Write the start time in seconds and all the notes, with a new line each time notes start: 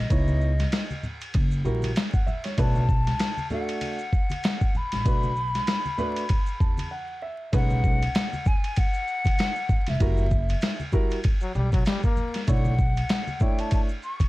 Already playing: D#5
0.10 C#2 B3 D#4 E4 C#5, kick, ride, maracas
0.28 high conga, maracas
0.41 maracas
0.59 snare, ride, maracas
0.72 snare, hi-hat pedal, ride, maracas
0.90 high conga, maracas
1.03 low conga, maracas
1.21 ride, maracas
1.34 F#1, kick, ride, high conga, maracas
1.51 maracas
1.65 A#1 G3 E4 F#4 A#4, maracas
1.82 ride, high conga, maracas
1.96 snare, hi-hat pedal, ride, maracas
2.13 F#5, kick, maracas
2.27 E5, low conga, maracas
2.44 C#5, snare, ride, maracas
2.57 B1 A3 D4 F#4 B4 A5, kick, ride, maracas
2.75 high conga, maracas
2.89 kick, maracas
3.07 snare, ride, maracas
3.19 snare, hi-hat pedal, ride, maracas
3.37 high conga, maracas
3.50 A3 D4 F#4 A4 F#5, low conga, maracas
3.68 ride, maracas
3.81 ride, high conga, maracas
3.99 maracas
4.13 kick, maracas
4.30 ride, high conga, maracas
4.43 snare, hi-hat pedal, ride, maracas
4.61 kick, maracas
4.75 B5, low conga, maracas
4.92 A1, snare, ride, maracas
5.05 B1 A3 D4 F#4 B4, kick, ride, maracas
5.23 high conga, maracas
5.36 maracas
5.55 snare, ride, maracas
5.67 snare, hi-hat pedal, ride, maracas
5.85 high conga, maracas
5.98 A3 D4 F#4 B4, low conga, maracas
6.16 ride, maracas
6.29 kick, ride, high conga, maracas
6.46 maracas
6.60 E2 A5, kick, maracas
6.77 ride, high conga, maracas
6.91 F#5
7.22 E5
7.52 B1 G#3 C#4 D#4 B4 F#5, kick, ride, maracas
7.70 high conga, maracas
7.84 kick, maracas
8.02 ride, maracas
8.15 snare, hi-hat pedal, ride, maracas
8.33 high conga, maracas
8.46 G#5, kick, low conga, maracas
8.64 ride, maracas
8.76 F#5, kick, ride, maracas
8.94 maracas
9.08 maracas
9.25 kick, ride, high conga, maracas
9.38 snare, hi-hat pedal, ride, maracas
9.55 maracas
9.69 kick, low conga, maracas
9.86 F1 E5, snare, ride, maracas
10.00 F#1 G3 E4 F#4 A#4, kick, ride, maracas
10.17 high conga, maracas
10.31 kick, maracas
10.49 ride, maracas
10.61 snare, hi-hat pedal, ride, maracas
10.80 high conga, maracas
10.92 G3 E4 F#4 A#4, kick, low conga, maracas
11.11 ride, maracas
11.24 kick, ride, maracas
11.41 F#3, maracas
11.55 B1 G3, maracas
11.72 F#3, kick, ride, high conga, maracas
11.85 G3, snare, hi-hat pedal, ride, maracas
12.03 A#3, kick, maracas
12.17 low conga, maracas
12.34 snare, ride, maracas
12.47 B1 A3 D4 E4 C#5 F#5, kick, ride, maracas
12.65 high conga, maracas
12.78 kick, maracas
12.96 ride, maracas
13.09 snare, hi-hat pedal, ride, maracas
13.27 high conga, maracas
13.40 A3 D4 E4 C#5 G5, kick, low conga, maracas
13.59 A5, ride, maracas
13.71 A5, kick, ride, maracas
13.89 maracas
14.03 C#6, maracas
14.20 kick, ride, high conga, maracas